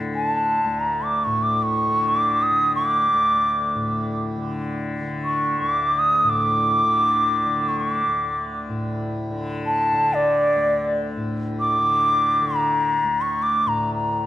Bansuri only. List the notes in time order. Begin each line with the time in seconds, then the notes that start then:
0.15 G#5
0.26 A5
0.80 A#5
1.02 D6
1.24 C#6
1.43 D6
1.63 C#6
2.08 D6
2.43 D#6
2.76 D6
5.24 C#6
5.59 C#6
5.71 D6
5.99 D#6
6.30 D6
7.68 C#6
7.80 C#6
7.91 D6
9.66 A5
10.14 D5
11.60 D6
12.56 A#5
13.21 C#6
13.42 D6
13.68 A#5
13.95 A#5